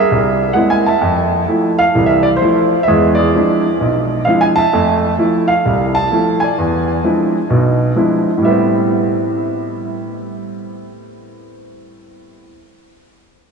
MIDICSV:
0, 0, Header, 1, 2, 480
1, 0, Start_track
1, 0, Key_signature, 0, "minor"
1, 0, Tempo, 463320
1, 1059, Time_signature, 4, 2, 24, 8
1, 14003, End_track
2, 0, Start_track
2, 0, Title_t, "Grand piano"
2, 0, Program_c, 0, 0
2, 0, Note_on_c, 0, 68, 68
2, 0, Note_on_c, 0, 70, 67
2, 0, Note_on_c, 0, 76, 92
2, 119, Note_on_c, 0, 36, 63
2, 528, Note_off_c, 0, 36, 0
2, 553, Note_on_c, 0, 78, 71
2, 570, Note_on_c, 0, 56, 53
2, 577, Note_on_c, 0, 58, 49
2, 581, Note_on_c, 0, 60, 51
2, 581, Note_on_c, 0, 64, 61
2, 714, Note_off_c, 0, 78, 0
2, 727, Note_on_c, 0, 80, 79
2, 860, Note_off_c, 0, 76, 0
2, 871, Note_off_c, 0, 68, 0
2, 871, Note_off_c, 0, 70, 0
2, 895, Note_on_c, 0, 81, 80
2, 898, Note_off_c, 0, 80, 0
2, 915, Note_off_c, 0, 56, 0
2, 916, Note_on_c, 0, 76, 62
2, 919, Note_off_c, 0, 58, 0
2, 921, Note_off_c, 0, 60, 0
2, 921, Note_off_c, 0, 64, 0
2, 1051, Note_on_c, 0, 41, 65
2, 1471, Note_off_c, 0, 41, 0
2, 1493, Note_off_c, 0, 81, 0
2, 1536, Note_on_c, 0, 53, 52
2, 1538, Note_on_c, 0, 57, 46
2, 1544, Note_on_c, 0, 64, 58
2, 1822, Note_off_c, 0, 76, 0
2, 1850, Note_on_c, 0, 77, 96
2, 1876, Note_off_c, 0, 53, 0
2, 1878, Note_off_c, 0, 57, 0
2, 1880, Note_off_c, 0, 64, 0
2, 2019, Note_on_c, 0, 52, 66
2, 2023, Note_on_c, 0, 36, 63
2, 2137, Note_on_c, 0, 76, 79
2, 2178, Note_off_c, 0, 77, 0
2, 2302, Note_off_c, 0, 76, 0
2, 2310, Note_on_c, 0, 74, 83
2, 2362, Note_off_c, 0, 74, 0
2, 2433, Note_off_c, 0, 52, 0
2, 2435, Note_off_c, 0, 36, 0
2, 2451, Note_on_c, 0, 72, 81
2, 2499, Note_on_c, 0, 53, 56
2, 2501, Note_on_c, 0, 57, 49
2, 2507, Note_on_c, 0, 64, 62
2, 2836, Note_off_c, 0, 53, 0
2, 2837, Note_off_c, 0, 57, 0
2, 2840, Note_off_c, 0, 64, 0
2, 2934, Note_on_c, 0, 76, 82
2, 2965, Note_off_c, 0, 72, 0
2, 2980, Note_on_c, 0, 56, 63
2, 2983, Note_on_c, 0, 40, 65
2, 2983, Note_on_c, 0, 68, 62
2, 3254, Note_off_c, 0, 76, 0
2, 3262, Note_on_c, 0, 74, 79
2, 3284, Note_off_c, 0, 68, 0
2, 3300, Note_on_c, 0, 68, 56
2, 3392, Note_off_c, 0, 56, 0
2, 3394, Note_off_c, 0, 40, 0
2, 3472, Note_on_c, 0, 60, 50
2, 3473, Note_on_c, 0, 53, 52
2, 3474, Note_on_c, 0, 56, 48
2, 3475, Note_on_c, 0, 62, 47
2, 3478, Note_on_c, 0, 64, 56
2, 3801, Note_off_c, 0, 60, 0
2, 3802, Note_off_c, 0, 53, 0
2, 3802, Note_off_c, 0, 56, 0
2, 3803, Note_off_c, 0, 62, 0
2, 3804, Note_off_c, 0, 64, 0
2, 3943, Note_on_c, 0, 35, 63
2, 4195, Note_off_c, 0, 74, 0
2, 4214, Note_off_c, 0, 68, 0
2, 4352, Note_off_c, 0, 35, 0
2, 4401, Note_on_c, 0, 77, 79
2, 4422, Note_on_c, 0, 60, 50
2, 4423, Note_on_c, 0, 53, 54
2, 4423, Note_on_c, 0, 56, 50
2, 4428, Note_on_c, 0, 62, 46
2, 4432, Note_on_c, 0, 64, 59
2, 4567, Note_on_c, 0, 80, 83
2, 4569, Note_off_c, 0, 77, 0
2, 4619, Note_off_c, 0, 80, 0
2, 4720, Note_on_c, 0, 81, 101
2, 4748, Note_on_c, 0, 76, 66
2, 4755, Note_off_c, 0, 60, 0
2, 4756, Note_off_c, 0, 53, 0
2, 4756, Note_off_c, 0, 56, 0
2, 4758, Note_off_c, 0, 62, 0
2, 4760, Note_off_c, 0, 64, 0
2, 4903, Note_on_c, 0, 41, 70
2, 4904, Note_on_c, 0, 57, 66
2, 5312, Note_off_c, 0, 41, 0
2, 5313, Note_off_c, 0, 57, 0
2, 5370, Note_on_c, 0, 53, 51
2, 5375, Note_on_c, 0, 57, 48
2, 5377, Note_on_c, 0, 64, 61
2, 5654, Note_off_c, 0, 76, 0
2, 5674, Note_on_c, 0, 77, 83
2, 5709, Note_off_c, 0, 53, 0
2, 5711, Note_off_c, 0, 57, 0
2, 5712, Note_off_c, 0, 64, 0
2, 5717, Note_off_c, 0, 81, 0
2, 5860, Note_on_c, 0, 36, 62
2, 6161, Note_on_c, 0, 81, 96
2, 6177, Note_off_c, 0, 77, 0
2, 6270, Note_off_c, 0, 36, 0
2, 6335, Note_on_c, 0, 53, 52
2, 6339, Note_on_c, 0, 57, 48
2, 6340, Note_on_c, 0, 64, 58
2, 6612, Note_off_c, 0, 81, 0
2, 6632, Note_on_c, 0, 80, 74
2, 6671, Note_off_c, 0, 53, 0
2, 6672, Note_on_c, 0, 74, 57
2, 6673, Note_off_c, 0, 57, 0
2, 6674, Note_off_c, 0, 64, 0
2, 6819, Note_on_c, 0, 40, 61
2, 7230, Note_off_c, 0, 40, 0
2, 7295, Note_on_c, 0, 53, 51
2, 7297, Note_on_c, 0, 56, 44
2, 7297, Note_on_c, 0, 62, 47
2, 7301, Note_on_c, 0, 60, 48
2, 7302, Note_on_c, 0, 64, 57
2, 7632, Note_off_c, 0, 53, 0
2, 7632, Note_off_c, 0, 56, 0
2, 7632, Note_off_c, 0, 62, 0
2, 7634, Note_off_c, 0, 60, 0
2, 7635, Note_off_c, 0, 64, 0
2, 7770, Note_on_c, 0, 35, 65
2, 7776, Note_on_c, 0, 47, 64
2, 8186, Note_off_c, 0, 35, 0
2, 8189, Note_off_c, 0, 47, 0
2, 8195, Note_off_c, 0, 80, 0
2, 8215, Note_off_c, 0, 74, 0
2, 8246, Note_on_c, 0, 56, 47
2, 8250, Note_on_c, 0, 53, 53
2, 8251, Note_on_c, 0, 62, 47
2, 8252, Note_on_c, 0, 60, 48
2, 8261, Note_on_c, 0, 64, 59
2, 8588, Note_off_c, 0, 56, 0
2, 8590, Note_off_c, 0, 53, 0
2, 8590, Note_off_c, 0, 62, 0
2, 8591, Note_off_c, 0, 60, 0
2, 8595, Note_off_c, 0, 64, 0
2, 8678, Note_on_c, 0, 45, 62
2, 8726, Note_on_c, 0, 55, 57
2, 8752, Note_on_c, 0, 76, 68
2, 8761, Note_on_c, 0, 59, 54
2, 8811, Note_on_c, 0, 60, 65
2, 12872, Note_off_c, 0, 45, 0
2, 12905, Note_off_c, 0, 76, 0
2, 12920, Note_off_c, 0, 55, 0
2, 12956, Note_off_c, 0, 59, 0
2, 13005, Note_off_c, 0, 60, 0
2, 14003, End_track
0, 0, End_of_file